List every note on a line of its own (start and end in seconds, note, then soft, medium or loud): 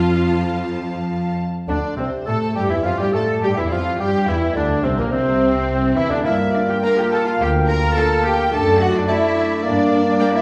0.00 1.48 F2 medium
0.00 1.34 F3 medium
0.00 1.39 F4 medium
0.00 1.35 F5 medium
0.00 1.44 A5 medium
1.68 1.76 D2 medium
1.68 1.95 D3 medium
1.68 1.81 D3 medium
1.68 1.77 D4 medium
1.68 1.96 D4 medium
1.68 1.77 D4 medium
1.68 1.75 D5 medium
1.68 1.96 D5 medium
1.96 2.06 C2 soft
1.96 2.28 C3 soft
1.96 2.11 C3 soft
1.96 2.10 C4 soft
1.96 2.05 C4 soft
1.96 2.06 C4 soft
1.96 2.07 C4 soft
1.96 2.26 C5 soft
1.96 2.27 C5 soft
2.26 2.35 A2 medium
2.26 2.55 A3 medium
2.26 2.56 A3 medium
2.26 2.39 A4 medium
2.26 2.55 A4 medium
2.26 2.36 A4 medium
2.26 2.56 A4 medium
2.26 2.55 A5 medium
2.26 2.56 A5 medium
2.55 2.70 G2 medium
2.55 2.72 G3 medium
2.55 2.63 G3 medium
2.55 2.69 G4 medium
2.55 2.70 G4 medium
2.55 2.62 G4 medium
2.55 2.71 G4 medium
2.55 2.70 G5 medium
2.55 2.70 G5 soft
2.69 2.76 E2 soft
2.69 2.84 E3 medium
2.69 2.78 E3 medium
2.69 2.76 E4 medium
2.69 2.85 E4 medium
2.69 2.86 E4 medium
2.69 2.75 E5 soft
2.69 2.85 E5 medium
2.82 2.90 F2 medium
2.82 2.91 F3 medium
2.82 2.99 F4 medium
2.82 2.89 F5 medium
2.82 3.00 F5 medium
2.86 2.93 F3 medium
2.86 3.00 F4 medium
2.98 3.13 G2 medium
2.98 3.06 G3 medium
2.98 3.07 G3 medium
2.98 3.15 G4 medium
2.98 3.14 G4 medium
2.98 3.15 G4 medium
2.98 3.13 G5 soft
2.98 3.06 G5 soft
3.13 3.42 A2 medium
3.13 3.42 A3 medium
3.13 3.27 A3 medium
3.13 3.41 A4 medium
3.13 3.23 A4 medium
3.13 3.42 A4 medium
3.13 3.24 A4 medium
3.13 3.42 A5 medium
3.13 3.24 A5 medium
3.41 3.57 G2 medium
3.41 3.48 G3 medium
3.41 3.57 G3 medium
3.41 3.56 G4 medium
3.41 3.57 G4 medium
3.41 3.49 G4 medium
3.41 3.56 G5 medium
3.41 3.49 G5 medium
3.55 3.71 E2 soft
3.55 3.71 E3 medium
3.55 3.64 E3 medium
3.55 3.71 E4 medium
3.55 3.73 E4 medium
3.55 3.71 E4 medium
3.55 3.72 E4 medium
3.55 3.70 E5 medium
3.55 3.63 E5 soft
3.69 3.99 F2 medium
3.69 3.84 F3 medium
3.69 4.00 F3 medium
3.69 3.99 F4 medium
3.69 3.80 F4 medium
3.69 3.98 F5 medium
3.69 3.99 F5 medium
3.98 4.26 G2 medium
3.98 4.27 G3 medium
3.98 4.27 G4 medium
3.98 4.30 G4 medium
3.98 4.28 G4 medium
3.98 4.27 G5 medium
4.27 4.56 E2 medium
4.27 4.40 E3 medium
4.27 4.55 E3 medium
4.27 4.56 E4 medium
4.27 4.55 E4 medium
4.27 4.56 E4 medium
4.27 4.56 E5 medium
4.27 4.36 E5 medium
4.54 4.83 D2 medium
4.54 4.68 D3 medium
4.54 4.82 D3 medium
4.54 4.84 D4 medium
4.54 4.64 D4 medium
4.54 4.86 D4 medium
4.54 4.84 D4 medium
4.54 4.83 D5 medium
4.54 4.64 D5 medium
4.83 4.97 C2 medium
4.83 4.97 C3 medium
4.83 4.98 C3 medium
4.83 4.90 C4 medium
4.83 4.98 C4 medium
4.83 4.99 C4 medium
4.83 4.98 C5 medium
4.83 4.90 C5 medium
4.97 5.12 A#1 medium
4.97 5.04 A#2 medium
4.97 5.12 A#2 medium
4.97 5.12 A#3 medium
4.97 5.13 A#3 medium
4.97 5.12 A#4 medium
4.97 5.03 A#4 medium
5.11 5.97 C2 medium
5.11 5.95 C3 medium
5.11 5.96 C3 medium
5.11 5.97 C4 medium
5.11 5.99 C4 medium
5.11 5.96 C4 medium
5.11 5.75 C5 medium
5.11 5.96 C5 medium
5.96 6.11 E2 medium
5.96 6.11 E3 medium
5.96 6.03 E3 medium
5.96 6.12 E4 medium
5.96 6.13 E4 medium
5.96 6.12 E4 medium
5.96 6.03 E5 medium
5.96 6.12 E5 medium
6.10 6.26 D2 medium
6.10 6.23 D3 medium
6.10 6.26 D3 medium
6.10 6.26 D4 medium
6.10 6.17 D4 medium
6.10 6.26 D4 medium
6.10 6.18 D4 medium
6.10 6.26 D5 medium
6.10 6.18 D5 medium
6.24 6.73 G2 medium
6.24 8.47 A#3 medium
6.24 8.48 A#3 medium
6.24 6.33 E4 medium
6.24 8.48 F4 medium
6.24 6.54 E5 medium
6.24 6.55 E5 medium
6.24 8.49 F5 medium
6.54 6.60 D4 medium
6.54 6.69 D5 medium
6.54 6.70 D5 medium
6.69 6.75 G4 medium
6.69 6.84 G5 medium
6.83 6.91 A#3 medium
6.83 6.91 D4 medium
6.83 6.97 A#4 medium
6.83 6.93 F5 medium
6.83 6.93 G5 medium
6.83 6.98 A#5 medium
6.98 7.13 G4 medium
6.98 7.13 G5 medium
7.11 7.26 A4 medium
7.11 7.27 A5 medium
7.26 7.32 F4 medium
7.26 7.41 F5 medium
7.39 7.87 D2 medium
7.39 7.49 G4 medium
7.39 7.50 G5 medium
7.43 7.70 G5 medium
7.68 7.96 A#4 medium
7.68 7.96 A#5 medium
7.68 7.97 A#5 medium
7.96 8.05 A#3 medium
7.96 8.05 D4 medium
7.96 8.24 A4 medium
7.96 8.05 F5 medium
7.96 8.04 G5 medium
7.96 8.24 A5 medium
7.96 8.25 A5 medium
8.23 8.52 G4 medium
8.23 8.51 G5 medium
8.23 8.52 G5 medium
8.51 8.99 F#2 medium
8.51 9.61 A3 medium
8.51 9.65 A3 medium
8.51 10.42 D4 medium
8.51 8.80 A4 medium
8.51 10.42 D5 medium
8.51 8.80 A5 medium
8.79 8.94 F#4 medium
8.79 8.94 F#5 medium
8.79 8.87 F#5 medium
8.93 9.08 D4 medium
8.93 9.08 D5 medium
8.93 9.01 D5 medium
9.07 9.16 A3 medium
9.07 9.63 E4 medium
9.07 9.17 F#4 medium
9.07 9.17 D5 medium
9.07 9.62 E5 medium
9.07 9.64 E5 medium
9.07 9.17 A5 medium
9.63 10.10 G2 medium
9.63 10.42 A#3 medium
9.63 10.33 D4 medium
9.63 10.34 D5 medium
10.20 10.29 A#3 medium
10.20 10.28 A#4 medium
10.20 10.28 D5 medium
10.20 10.28 G5 medium
10.35 10.42 E4 medium
10.35 10.42 E5 medium
10.35 10.41 E5 medium